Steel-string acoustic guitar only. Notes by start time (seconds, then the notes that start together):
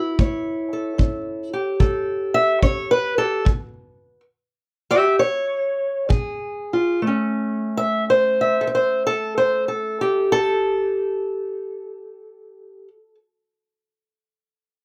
Already playing: E4
0.19 A3 C#5
0.73 A4
0.98 C#4
1.53 G4
1.80 E3 A4
2.34 E5
2.63 C#4 C#5
2.91 B4
3.18 G4 A4
3.45 A2
4.91 G4 E5
5.19 C#5
6.09 A#2 G#4
6.73 F4
7.02 A3
7.07 C#4
7.77 E5
8.10 C5
8.41 E5
8.61 A4
8.67 E5
8.75 C5
9.07 A4
9.38 C5
9.68 A4
10.01 G4
10.32 A4